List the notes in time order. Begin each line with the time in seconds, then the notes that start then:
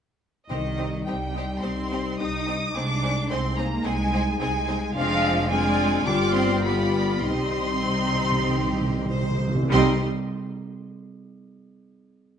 0.49 C2 C3 D#3 G3 C4 D#4 G4 C5 D#5
0.78 C4 D#4 G4 C5
1.05 C2 G3 C4 D#4 G4 C5 G5
1.35 C4 D#4 G4 C5
1.63 C2 C4 D#4 G4 C5 C6
1.91 C4 D#4 G4 C5
2.19 C2 C4 D#4 G4 C5 D#6
2.47 C4 D#4 G4 C5
2.74 C2 G#3 C4 D4 D#4 G#4 C5 D6
3.03 C4 D#4 G#4 C5
3.30 C2 C4 D#4 G#4 C5 C6
3.57 A#3 C4 D#4 G#4 C5 A#5
3.85 C2 G#3 C4 D#4 G#4 C5 G#5
4.12 C4 D#4 G#4 C5
4.39 C2 G#3 C4 D#4 G#4 C5 G#5
4.68 C4 D#4 G#4 C5
4.95 F1 F3 G#3 C4 D4 F4 G#4 D5 F5
5.50 G#3 C4 D4 F4 G#4 D5 G#5
6.04 G1 G2 G3 D4 F4 G4 D5 D6
6.34 C4 C6
6.64 G3 B3 F4 G4 D5 B5
7.22 C2 C3 G3 C4 D#4 G4 C6
7.27 D#5
7.33 C3
7.42 C3
7.50 C3
7.58 C3
7.66 C3
7.73 C3
7.82 C3 D#4
7.90 C3
7.99 C3
8.07 C3
8.15 C3
8.23 C3
8.32 C3
8.40 C3
8.48 C3 G4
8.56 C3
8.65 C3
8.73 C3
8.81 C3
8.89 C3
8.97 C3
9.06 C3
9.10 C3 C5
9.23 C3
9.31 C3
9.38 C3
9.47 C3
9.55 C3
9.63 C3
9.71 C2 C3 G3 C4 D#4 G4 D#5 C6